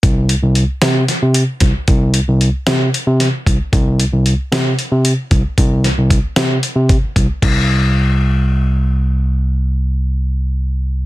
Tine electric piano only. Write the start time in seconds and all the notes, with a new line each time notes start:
0.03 C2
0.42 C2
0.82 C3
1.22 C3
1.61 C2
1.88 C2
2.27 C2
2.67 C3
3.07 C3
3.47 C2
3.73 C2
4.12 C2
4.52 C3
4.92 C3
5.31 C2
5.58 C2
5.98 C2
6.36 C3
6.75 C3
7.16 C2
7.42 C2